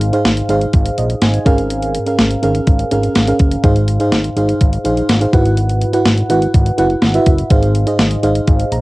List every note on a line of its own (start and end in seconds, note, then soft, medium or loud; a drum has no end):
0.00 0.12 G#1 loud
0.00 0.46 G#2 medium
0.00 0.13 D#4 medium
0.00 0.13 G#4 medium
0.00 0.14 C5 medium
0.00 0.14 F5 medium
0.00 closed hi-hat medium
0.13 0.38 D#4 medium
0.13 0.38 G#4 medium
0.13 0.39 C5 medium
0.13 0.39 F5 medium
0.13 closed hi-hat soft
0.25 0.43 G#1 medium
0.25 snare loud
0.25 closed hi-hat medium
0.37 closed hi-hat soft
0.49 0.67 G#1 medium
0.49 0.83 D#4 medium
0.49 0.83 G#4 medium
0.49 0.83 C5 medium
0.49 0.84 F5 medium
0.49 closed hi-hat medium
0.62 closed hi-hat soft
0.73 0.91 G#1 loud
0.73 kick medium
0.73 closed hi-hat medium
0.86 closed hi-hat medium
0.98 1.15 A#1 medium
0.98 1.21 D#5 medium
0.98 closed hi-hat medium
1.10 closed hi-hat soft
1.22 1.39 G#1 loud
1.22 1.68 C5 soft
1.22 1.68 G#5 medium
1.22 snare medium
1.22 closed hi-hat medium
1.34 closed hi-hat medium
1.45 1.98 G#1 loud
1.45 2.15 G#2 medium
1.45 1.94 C#4 medium
1.45 1.94 G#4 medium
1.45 1.95 A#4 medium
1.45 1.95 F5 loud
1.45 kick loud
1.45 closed hi-hat medium
1.58 closed hi-hat soft
1.70 closed hi-hat medium
1.83 closed hi-hat medium
1.95 closed hi-hat medium
2.06 2.32 C#4 medium
2.06 2.32 G#4 medium
2.06 2.32 A#4 medium
2.06 2.32 F5 medium
2.06 closed hi-hat soft
2.19 2.36 G#1 medium
2.19 snare loud
2.19 closed hi-hat medium
2.31 closed hi-hat soft
2.42 2.60 G#1 medium
2.42 2.76 C#4 medium
2.42 2.76 G#4 medium
2.42 2.77 A#4 medium
2.42 2.77 F5 medium
2.42 closed hi-hat medium
2.55 closed hi-hat soft
2.67 2.85 G#1 loud
2.67 kick medium
2.67 closed hi-hat medium
2.79 closed hi-hat medium
2.91 3.09 G#1 medium
2.91 3.16 C#4 medium
2.91 3.17 G#4 medium
2.91 3.17 A#4 medium
2.91 3.17 F5 medium
2.91 closed hi-hat medium
3.03 closed hi-hat soft
3.15 3.33 G#1 loud
3.15 snare medium
3.15 closed hi-hat medium
3.27 3.53 C#4 medium
3.27 3.53 G#4 medium
3.27 3.53 A#4 medium
3.27 3.53 F5 medium
3.27 closed hi-hat soft
3.39 3.57 F#1 medium
3.39 kick medium
3.39 closed hi-hat medium
3.51 closed hi-hat soft
3.64 3.99 G#1 medium
3.64 4.33 G#2 medium
3.64 3.89 D#4 medium
3.64 3.89 G#4 medium
3.64 3.89 C5 medium
3.64 3.90 F5 medium
3.64 kick loud
3.64 closed hi-hat medium
3.76 closed hi-hat medium
3.88 closed hi-hat medium
4.00 4.25 D#4 medium
4.00 4.25 G#4 medium
4.00 4.26 C5 medium
4.00 4.26 F5 medium
4.00 closed hi-hat soft
4.12 4.30 G#1 medium
4.12 snare loud
4.12 closed hi-hat medium
4.24 closed hi-hat soft
4.36 4.54 G#1 medium
4.36 4.70 D#4 medium
4.36 4.70 G#4 medium
4.36 4.70 C5 medium
4.36 4.71 F5 medium
4.36 closed hi-hat medium
4.49 closed hi-hat soft
4.61 4.78 G#1 loud
4.61 kick medium
4.61 closed hi-hat medium
4.73 closed hi-hat medium
4.84 5.02 A#1 medium
4.84 5.10 D#4 medium
4.84 5.10 G#4 medium
4.84 5.10 C5 medium
4.84 5.10 F5 medium
4.84 closed hi-hat medium
4.97 closed hi-hat soft
5.09 5.26 G#1 loud
5.09 snare medium
5.09 closed hi-hat medium
5.20 5.33 D#4 medium
5.20 5.33 G#4 medium
5.20 5.33 C5 medium
5.20 5.34 F5 medium
5.20 closed hi-hat medium
5.33 5.86 G#1 medium
5.33 6.02 G#2 medium
5.33 5.81 E4 medium
5.33 5.82 F#4 medium
5.33 5.82 B4 medium
5.33 5.82 F#5 medium
5.33 kick medium
5.33 closed hi-hat medium
5.45 closed hi-hat soft
5.57 closed hi-hat medium
5.69 closed hi-hat medium
5.82 closed hi-hat medium
5.93 6.19 E4 medium
5.93 6.19 F#4 medium
5.93 6.19 B4 medium
5.93 6.19 F#5 medium
5.93 closed hi-hat soft
6.06 6.23 G#1 loud
6.06 snare loud
6.06 closed hi-hat medium
6.18 closed hi-hat soft
6.29 6.47 G#1 medium
6.29 6.63 E4 medium
6.29 6.64 F#4 medium
6.29 6.64 B4 medium
6.29 6.64 F#5 medium
6.29 closed hi-hat medium
6.42 closed hi-hat soft
6.54 6.72 G#1 loud
6.54 kick medium
6.54 closed hi-hat medium
6.66 closed hi-hat medium
6.78 6.96 F#1 medium
6.78 7.03 E4 medium
6.78 7.04 F#4 medium
6.78 7.04 B4 medium
6.78 7.04 F#5 medium
6.78 closed hi-hat medium
6.90 closed hi-hat soft
7.02 7.20 G#1 loud
7.02 snare medium
7.02 closed hi-hat medium
7.14 7.40 E4 medium
7.14 7.40 F#4 medium
7.14 7.40 B4 medium
7.14 7.40 E5 medium
7.14 closed hi-hat medium
7.27 7.44 F#1 medium
7.27 kick medium
7.27 closed hi-hat medium
7.39 closed hi-hat medium
7.50 7.86 G#1 loud
7.50 8.20 G#2 medium
7.50 7.76 D#4 medium
7.50 7.76 G#4 medium
7.50 7.76 C5 medium
7.50 7.77 F5 medium
7.50 kick loud
7.50 closed hi-hat medium
7.63 closed hi-hat medium
7.75 closed hi-hat medium
7.87 8.12 D#4 medium
7.87 8.12 G#4 medium
7.87 8.13 C5 medium
7.87 8.13 D#5 medium
7.87 closed hi-hat soft
7.99 8.17 G#1 medium
7.99 snare loud
7.99 closed hi-hat medium
8.11 closed hi-hat soft
8.23 8.41 G#1 medium
8.23 8.57 D#4 medium
8.23 8.57 G#4 medium
8.23 8.57 C5 medium
8.23 8.58 F5 medium
8.23 closed hi-hat medium
8.35 closed hi-hat soft
8.47 8.65 G#1 loud
8.47 kick medium
8.47 closed hi-hat medium
8.60 closed hi-hat medium
8.72 8.81 A#1 medium
8.72 8.81 A#5 medium
8.72 closed hi-hat medium